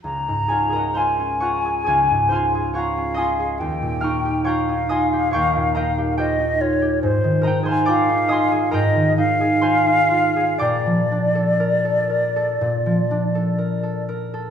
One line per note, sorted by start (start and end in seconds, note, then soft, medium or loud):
0.04 1.86 C#2 soft
0.04 0.98 A#5 medium
0.28 2.10 G#2 soft
0.48 0.96 F4 soft
0.48 0.69 G#4 soft
0.48 1.40 C#5 soft
0.48 0.95 G#5 medium
0.52 0.95 F5 soft
0.69 1.64 G#4 soft
0.69 4.63 A#4 soft
0.69 1.12 A#5 medium
0.76 3.14 D#5 soft
0.76 1.41 F#5 soft
0.94 1.41 F4 soft
0.94 2.28 C5 medium
0.94 1.86 F5 medium
0.94 2.74 G#5 medium
0.94 2.29 C6 medium
0.99 1.85 G#5 medium
1.19 2.96 C#4 soft
1.40 2.31 F4 soft
1.40 1.86 C#5 soft
1.40 2.75 F#5 soft
1.40 2.75 A#5 soft
1.40 2.74 C#6 medium
1.65 1.84 G#4 soft
1.84 3.63 C#2 soft
1.84 2.53 G#4 soft
1.84 2.73 C#5 soft
1.84 2.31 G#5 medium
1.90 2.31 F5 medium
2.11 3.64 G#2 soft
2.29 2.75 F4 soft
2.29 3.63 C5 medium
2.29 4.00 F5 medium
2.29 3.16 C6 medium
2.35 3.16 G#5 medium
2.55 3.38 G#4 soft
2.74 3.17 F4 soft
2.74 4.44 C#5 soft
2.74 3.61 F5 medium
2.74 3.63 F#5 soft
2.74 4.01 C#6 medium
2.78 4.01 A#5 medium
2.97 6.87 C#4 soft
3.14 4.46 F4 soft
3.14 4.89 D#5 medium
3.14 4.02 G#5 medium
3.14 4.88 D#6 medium
3.20 4.02 C6 medium
3.39 3.64 G#4 soft
3.59 5.34 D#2 soft
3.59 4.47 G5 medium
3.82 5.55 A#2 soft
4.01 4.68 D#4 soft
4.01 7.66 F5 medium
4.01 4.45 A#5 medium
4.01 4.44 C#6 medium
4.01 7.91 F6 medium
4.25 5.12 G4 soft
4.44 4.90 F4 soft
4.44 5.31 C#5 medium
4.44 6.19 F5 medium
4.44 5.33 G5 medium
4.44 5.33 A#5 medium
4.44 5.32 C#6 medium
4.69 5.76 D#4 soft
4.89 6.18 F4 soft
4.89 5.75 D#5 medium
4.89 7.66 G#5 medium
4.89 7.65 C6 medium
4.89 8.28 D#6 medium
5.13 5.97 G4 medium
5.31 7.07 D#2 soft
5.31 7.06 C#5 medium
5.31 5.75 G5 medium
5.31 7.06 C#6 medium
5.37 5.73 A#5 medium
5.56 7.07 A#2 soft
5.75 6.38 D#4 soft
5.75 7.41 A#4 medium
5.75 6.17 D#5 medium
5.75 6.16 G5 medium
5.75 7.42 A#5 medium
5.98 6.17 G4 soft
6.17 6.60 F4 soft
6.17 6.81 G4 medium
6.17 7.65 C5 soft
6.17 6.63 D#5 medium
6.17 7.43 D#5 soft
6.17 7.05 G5 medium
6.40 7.44 D#4 soft
6.61 7.87 F4 soft
6.61 7.02 C#5 medium
6.82 7.06 G4 soft
7.03 8.72 G#2 medium
7.03 7.61 C5 medium
7.24 8.94 D#3 soft
7.41 8.08 D#4 soft
7.41 8.71 A#4 medium
7.41 8.28 D#5 medium
7.41 7.86 A#5 medium
7.47 7.86 G5 medium
7.63 8.50 G#4 medium
7.63 9.61 C5 medium
7.63 8.29 C6 medium
7.68 9.62 F5 medium
7.68 8.29 G#5 medium
7.85 8.30 F4 medium
7.85 10.58 D5 medium
7.85 8.70 F5 medium
7.85 8.71 G5 medium
7.85 8.60 D6 medium
7.90 8.71 A#5 medium
8.09 9.17 D#4 soft
8.28 9.62 F4 medium
8.28 8.71 D#5 medium
8.28 9.61 G#5 medium
8.28 9.60 C6 medium
8.28 10.63 D#6 medium
8.52 9.39 G#4 medium
8.71 10.64 G#2 medium
8.71 11.59 A#4 medium
8.71 10.63 D#5 medium
8.71 9.17 D#5 medium
8.71 10.59 G5 medium
8.71 10.59 A#5 medium
8.95 10.64 D#3 soft
9.18 9.85 D#4 medium
9.18 10.57 F5 medium
9.40 10.35 G#4 medium
9.61 10.10 F4 soft
9.61 10.64 C5 medium
9.61 13.53 F5 medium
9.61 10.64 G#5 medium
9.61 10.63 C6 medium
9.86 10.64 D#4 soft
10.11 14.01 F4 medium
10.36 10.65 G#4 medium
10.58 12.60 A#2 medium
10.58 14.48 D5 medium
10.58 14.05 D5 medium
10.58 14.50 G5 medium
10.58 14.49 D6 medium
10.62 14.50 A#5 medium
10.86 12.85 F3 soft
11.11 13.10 D4 soft
11.35 11.84 A4 soft
11.60 12.09 A#4 medium
11.85 12.35 A4 medium
12.10 13.57 A#4 soft
12.36 13.34 A4 medium
12.61 14.50 A#2 medium
12.86 14.50 F3 soft
13.11 14.50 D4 medium
13.35 13.82 A4 soft
13.58 14.07 A#4 soft
13.83 14.33 A4 soft
14.09 14.50 A#4 medium
14.34 14.50 A4 medium